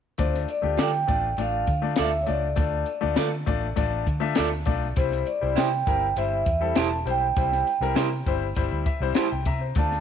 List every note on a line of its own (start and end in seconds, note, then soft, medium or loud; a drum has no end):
0.18 0.45 D2 medium
0.18 0.46 A3 medium
0.18 0.47 D4 medium
0.18 0.47 F4 medium
0.18 0.33 C5 medium
0.18 0.47 D5 medium
0.18 kick medium
0.18 closed hi-hat medium
0.18 tambourine medium
0.34 snare soft
0.48 0.80 D5 medium
0.48 closed hi-hat medium
0.48 tambourine soft
0.62 0.76 D2 medium
0.62 0.91 A3 medium
0.62 0.91 D4 medium
0.62 0.91 F4 medium
0.62 0.91 G4 medium
0.78 1.04 D3 medium
0.78 0.89 F4 medium
0.78 0.90 A4 medium
0.78 0.90 D5 medium
0.78 1.36 G5 medium
0.78 snare loud
0.78 closed hi-hat medium
0.78 tambourine medium
1.08 1.34 A1 medium
1.08 1.27 A3 medium
1.08 1.27 D4 medium
1.08 1.27 F4 medium
1.08 1.27 D5 medium
1.08 kick medium
1.08 closed hi-hat medium
1.08 tambourine soft
1.37 1.63 A1 medium
1.37 1.66 A3 medium
1.37 1.66 D4 medium
1.37 1.66 F4 medium
1.37 1.67 D5 medium
1.37 closed hi-hat medium
1.37 tambourine medium
1.42 2.02 F5 medium
1.67 1.93 D3 medium
1.67 kick medium
1.67 closed hi-hat medium
1.67 tambourine soft
1.82 2.10 A3 medium
1.82 2.11 D4 medium
1.82 2.11 F4 medium
1.82 2.11 D5 medium
1.96 2.24 D2 medium
1.96 2.09 F4 medium
1.96 2.09 A4 medium
1.96 2.10 D5 medium
1.96 snare loud
1.96 closed hi-hat loud
1.96 tambourine medium
2.00 2.23 E5 medium
2.22 2.29 C#5 medium
2.26 2.54 C#2 medium
2.26 2.46 A3 medium
2.26 2.46 D4 medium
2.26 2.46 F4 medium
2.26 2.46 D5 medium
2.26 3.15 D5 medium
2.26 closed hi-hat medium
2.26 tambourine soft
2.56 2.83 D2 medium
2.56 2.85 A3 medium
2.56 2.85 D4 medium
2.56 2.85 F4 medium
2.56 2.85 D5 medium
2.56 kick loud
2.56 closed hi-hat medium
2.56 tambourine medium
2.86 closed hi-hat medium
2.86 tambourine soft
3.01 3.16 D2 medium
3.01 3.30 A3 medium
3.01 3.30 D4 medium
3.01 3.30 F4 medium
3.01 3.30 D5 medium
3.16 3.43 D3 medium
3.16 3.28 F4 medium
3.16 3.29 A4 medium
3.16 3.29 D5 medium
3.16 snare loud
3.16 closed hi-hat medium
3.16 tambourine medium
3.46 3.73 A1 medium
3.46 3.66 A3 medium
3.46 3.66 D4 medium
3.46 3.66 F4 medium
3.46 3.66 D5 medium
3.46 kick medium
3.46 closed hi-hat medium
3.46 tambourine medium
3.76 4.03 A1 medium
3.76 4.05 A3 medium
3.76 4.05 D4 medium
3.76 4.05 F4 medium
3.76 4.05 D5 medium
3.76 kick medium
3.76 closed hi-hat medium
3.76 tambourine medium
4.06 4.32 D3 medium
4.06 kick medium
4.06 closed hi-hat medium
4.06 tambourine soft
4.20 4.49 A3 medium
4.20 4.49 D4 medium
4.20 4.49 F4 medium
4.20 4.50 E5 medium
4.35 4.63 D2 medium
4.35 4.48 F4 medium
4.35 4.48 A4 medium
4.35 4.49 D5 medium
4.35 snare loud
4.35 closed hi-hat medium
4.35 tambourine medium
4.65 4.92 B1 medium
4.65 4.85 A3 medium
4.65 4.85 D4 medium
4.65 4.85 F4 medium
4.65 4.85 D5 medium
4.65 kick medium
4.65 closed hi-hat medium
4.65 tambourine medium
4.96 5.22 C2 medium
4.96 5.25 G3 medium
4.96 5.25 C4 medium
4.96 5.25 E4 medium
4.96 5.28 C5 medium
4.96 5.25 C5 medium
4.96 kick loud
4.96 closed hi-hat medium
4.96 tambourine medium
5.11 snare soft
5.26 5.58 D5 medium
5.26 closed hi-hat medium
5.26 tambourine soft
5.41 5.55 C2 medium
5.41 5.69 G3 medium
5.41 5.70 C4 medium
5.41 5.70 E4 medium
5.41 5.70 C5 medium
5.56 5.82 C3 medium
5.56 5.68 E4 medium
5.56 5.68 G4 medium
5.56 5.68 C5 medium
5.56 6.13 G5 medium
5.56 snare medium
5.56 closed hi-hat medium
5.56 tambourine medium
5.86 6.12 G1 medium
5.86 6.05 G3 medium
5.86 6.05 C4 medium
5.86 6.05 E4 medium
5.86 6.06 A#4 medium
5.86 kick medium
5.86 closed hi-hat medium
5.86 tambourine soft
6.16 6.42 G1 medium
6.16 6.45 G3 medium
6.16 6.45 C4 medium
6.16 6.45 E4 medium
6.16 6.45 C5 medium
6.16 6.79 E5 medium
6.16 closed hi-hat medium
6.16 tambourine medium
6.46 6.72 E2 medium
6.46 kick medium
6.46 closed hi-hat medium
6.46 tambourine medium
6.61 6.89 G3 medium
6.61 6.89 C4 medium
6.61 6.89 E4 medium
6.61 6.89 A4 medium
6.75 7.02 E1 medium
6.75 6.87 E4 medium
6.75 6.88 G4 medium
6.75 6.88 C5 medium
6.75 6.92 A5 medium
6.75 snare loud
6.75 closed hi-hat medium
6.75 tambourine medium
7.05 7.31 B1 medium
7.05 7.25 G3 medium
7.05 7.25 C4 medium
7.05 7.25 E4 medium
7.05 7.25 C5 medium
7.05 closed hi-hat medium
7.05 tambourine soft
7.10 7.94 G5 medium
7.37 7.62 C2 medium
7.37 7.65 G3 medium
7.37 7.65 C4 medium
7.37 7.65 E4 medium
7.37 7.65 C5 medium
7.37 kick loud
7.37 closed hi-hat medium
7.37 tambourine medium
7.52 snare soft
7.67 closed hi-hat medium
7.67 tambourine soft
7.80 7.93 C2 medium
7.80 8.09 G3 medium
7.80 8.09 C4 medium
7.80 8.09 E4 medium
7.80 8.10 A#4 medium
7.80 snare soft
7.95 8.22 C3 medium
7.95 8.07 E4 medium
7.95 8.08 G4 medium
7.95 8.08 C5 medium
7.95 snare medium
7.95 closed hi-hat medium
7.95 tambourine medium
8.26 8.52 G1 medium
8.26 8.45 G3 medium
8.26 8.45 C4 medium
8.26 8.46 E4 medium
8.26 8.46 C5 medium
8.26 kick medium
8.26 closed hi-hat medium
8.26 tambourine medium
8.55 8.69 G1 medium
8.55 8.84 G3 medium
8.55 8.84 C4 medium
8.55 8.84 E4 medium
8.55 8.85 C5 medium
8.55 kick medium
8.55 closed hi-hat medium
8.55 tambourine medium
8.71 8.84 D2 medium
8.86 9.14 E5 medium
8.86 kick medium
8.86 closed hi-hat medium
8.86 tambourine soft
9.00 9.13 C2 medium
9.00 9.29 G3 medium
9.00 9.29 C4 medium
9.00 9.30 E4 medium
9.00 9.17 C5 medium
9.15 9.27 E4 medium
9.15 9.27 G4 medium
9.15 9.28 C5 medium
9.15 9.30 G5 medium
9.15 9.31 A5 medium
9.15 snare loud
9.15 closed hi-hat medium
9.15 tambourine medium
9.32 9.44 C2 medium
9.32 9.46 G5 medium
9.45 9.71 C3 medium
9.45 9.61 E5 medium
9.45 9.74 A#5 medium
9.45 kick medium
9.45 closed hi-hat medium
9.45 tambourine medium
9.61 9.90 C5 medium
9.75 10.00 D2 medium
9.75 10.00 A3 medium
9.75 10.00 D4 medium
9.75 10.00 F4 medium
9.75 10.00 D5 medium
9.75 10.00 A5 loud
9.75 kick loud
9.75 closed hi-hat medium
9.75 tambourine medium
9.91 snare soft